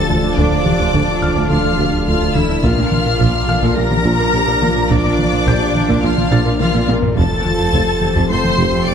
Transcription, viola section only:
Already playing: A4
0.37 D4
1.50 F4
2.08 F4
2.36 E4
2.64 F4
3.77 A#4
4.91 D4
6.04 F4
6.60 F4
7.17 A4
8.30 C5
8.87 D5

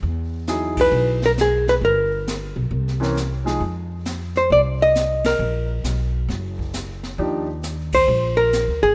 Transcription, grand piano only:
0.48 F#3 D#4 E4 G#4
3.00 E3 C4 C#4 A#4
3.44 F3 G#3 D#4 G#4
7.18 F3 D4 D#4 G4

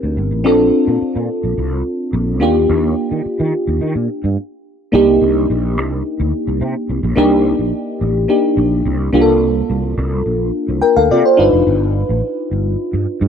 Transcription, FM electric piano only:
Already playing: C4 D#4 G4 A#4
0.44 C4 D4 F4 A4
2.40 A#3 D4 F4 G4
4.92 A#3 D4 D#4 G4
7.16 A#3 D4 D#4 G4
8.28 A#3 D4 D#4 G4
9.13 A#3 D4 F4 G4
9.21 A4
10.82 A#4 G5
10.96 A4 F5
11.11 F4 D5
11.25 C5
11.37 D4 D#4 F4 B4

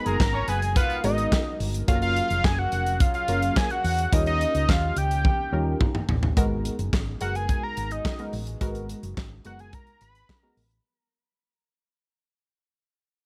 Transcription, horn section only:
0.06 G#3 G#4
0.34 C#4 C#5
0.48 B3 B4
0.76 B3 B4

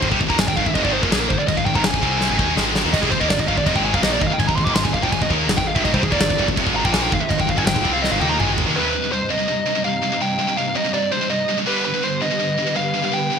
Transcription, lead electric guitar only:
0.30 A#5
0.39 G#5
0.48 G5
0.57 F5
0.66 E5
0.74 D#5
0.84 D5
0.93 C5
1.03 A#4
1.12 G#4
1.20 A#4
1.29 C5
1.39 D5
1.48 D#5
1.57 F5
1.66 G5
1.75 A#5
1.84 G#5
2.93 D#5
3.01 G#4
3.11 C5
3.20 D#5
3.29 D5
3.40 D#5
3.48 F5
3.58 D5
3.67 D#5
3.75 G5
3.85 G#5
3.95 F5
4.03 D#5
4.13 D5
4.22 D#5
4.27 F5
4.33 G5
4.39 G#5
4.47 A#5
4.56 C6
4.65 D6
4.75 C6
4.83 G#5
4.93 F5
5.03 G5
5.12 G#5
5.22 D#5
5.57 G5
5.67 F5
5.75 E5
5.84 D#5
5.94 C5
6.03 G#4
6.12 D5
6.76 A#5
6.85 G5
6.93 G#5
7.03 G5
7.12 F5
7.21 E5
7.31 D#5
7.40 G5
7.49 F5
7.58 G#5
7.66 G5
7.93 F5
8.02 D#5
8.11 F5
8.21 G5
8.29 A#5
8.38 G#5
8.76 B4
9.12 C5
9.30 D#5
9.85 F5
10.22 G5
10.57 F5
10.76 D#5
10.94 D5
11.11 C5
11.30 D#5
11.67 B4
11.85 B4
12.04 C5
12.22 D#5
12.76 F5
13.05 F5
13.14 G5

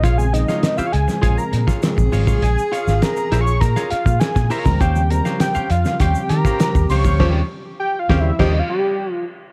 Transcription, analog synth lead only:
0.04 F5
0.18 G#5
0.33 D#5
0.77 F5
0.92 G#5
1.22 G#5
1.38 A#5
2.42 G#5
2.72 F5
3.02 A#5
3.41 C#6
3.61 A#5
3.91 F5
4.20 G#5
4.51 A#5
4.81 G5
5.10 A#5
5.41 G5
5.71 F5
6.00 G5
6.30 A#5
6.90 C#6
7.79 G5
7.99 F5
8.20 E5
8.40 D#5
8.59 F5
8.70 G4
9.13 F4

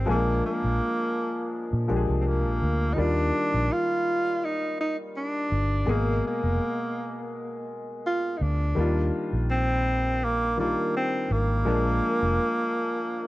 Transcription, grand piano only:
0.06 F3 G#3 A#3 C4 G#4
0.15 D4
1.88 F3 G#3 A#3 D4 G4
1.96 G#4
2.96 D#3 G3 A#3 F4 D5
5.86 B2 G#3 A#3 G#4
8.75 D#3 G3 A#3 D4 F4
10.57 D#3 G3 A#3 D4 F4
11.65 F3 G#3 A#3 D4 G#4

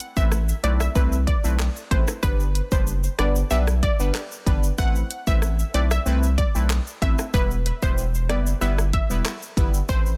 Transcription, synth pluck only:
0.17 E5
0.64 D5
0.80 E5
0.95 B4
1.27 D5
1.91 C5
2.23 B4
2.72 C5
3.19 D5
3.51 E5
3.83 D5
4.78 F#5
5.27 E5
5.74 D5
5.91 E5
6.38 D5
7.02 E5
7.34 B4
7.83 C5
8.29 D5
8.61 E5
8.93 E5
9.89 C5

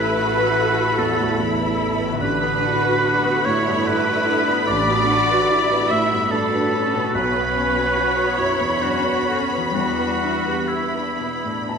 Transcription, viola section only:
Already playing: E4 A4
2.22 D3 A3
2.44 B3
2.63 D4
2.84 F#4
3.04 D4
3.25 B3
3.46 A3
3.68 B3
3.86 D4
4.08 F#4
4.28 D4
4.48 B3
4.68 A3
4.89 B3
5.10 D4
5.30 F#4
5.51 D4
5.71 B3
5.91 A3
6.10 B3
6.32 D4
6.52 F#4
6.73 D4
6.94 B3
7.15 F#3 C#5
7.35 B3
7.56 C#4
7.78 F#4
7.97 C#4
8.18 B3
8.40 F#3
8.60 B3
8.84 C#4
9.06 F#4
9.28 C#4
9.51 B3
9.76 B3 D4
10.00 D4
10.24 E4
10.47 G4
10.71 E4
10.95 D4
11.21 B3
11.47 D4
11.72 E4

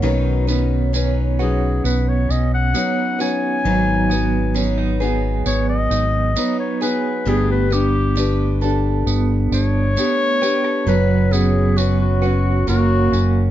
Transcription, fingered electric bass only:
0.03 B1
1.84 B1
2.29 B1
3.65 G#1
5.45 G#1
5.90 G#1
7.26 G1
9.06 G1
9.51 G1
10.86 F#1
12.67 F#1
13.12 F#1

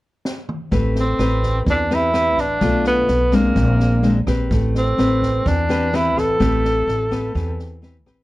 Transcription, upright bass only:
0.72 A1
1.19 A1
1.67 E2
2.37 A1
2.61 B1
3.08 B1
3.56 A#1
4.27 A#1
4.51 A1
4.98 A1
5.46 E2
6.17 A1
6.40 A1
6.87 A1
7.35 E2
8.06 A1

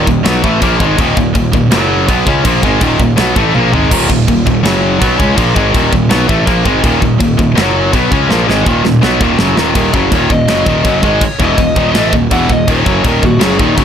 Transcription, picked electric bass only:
0.07 D#1
0.26 B1
0.44 A1
0.62 A#1
0.80 G#1
0.98 D#1
1.17 D#1
1.35 D#1
1.54 D#1
1.72 F#1
2.08 B1
2.27 C#2
2.45 A#1
2.64 G#1
2.81 D#1
2.99 D#1
3.18 B1
3.36 A1
3.55 A#1
3.72 G#1
3.91 D#1
4.10 D#1
4.28 D#1
4.47 D#1
4.64 F#1
5.02 B1
5.19 C#2
5.38 A#1
5.56 G#1
5.74 D#1
5.93 D#1
6.11 B1
6.29 A1
6.47 A#1
6.66 G#1
6.84 D#1
7.02 D#1
7.20 D#1
7.39 D#1
7.57 F#1
7.93 B1
8.12 C#2
8.30 A#1
8.48 G#1
8.66 D#1
8.84 D#1
9.03 B1
9.21 D#1
9.39 F#1
9.57 D#1
9.76 D#1
9.94 F#1
10.12 D#1
10.30 D#1
10.49 F#1
10.66 D#1
10.85 F#1
11.03 G#1
11.40 E1
11.58 D#1
11.76 D#1
11.95 A1
12.12 D#1
12.31 E1
12.50 D#1
12.68 D#1
12.86 F#1
13.04 D#1
13.23 D#1
13.41 F#1
13.60 D#1
13.78 F#1

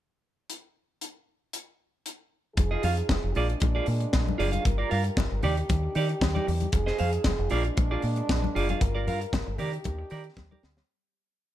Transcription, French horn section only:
2.56 F3 D#4 G#4
3.34 G#3 A#3 D4
4.65 G3 F4 A#4
5.43 D#3 D4 G4
6.72 F3 D#4 G#4
7.51 G#3 A#3 D4
8.80 G3 F4 A#4
9.58 D#3 D4 G4

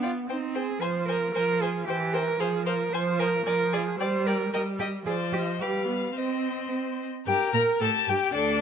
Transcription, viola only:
Already playing: B3
0.30 C4
0.82 F3
1.35 F3
1.88 E3
2.39 F3
2.93 F3
3.46 F3
3.99 G3
4.53 G3
5.06 F3
5.61 G3
6.15 C4
7.27 G4
7.54 A#4
7.81 A4
8.08 G4
8.34 D4

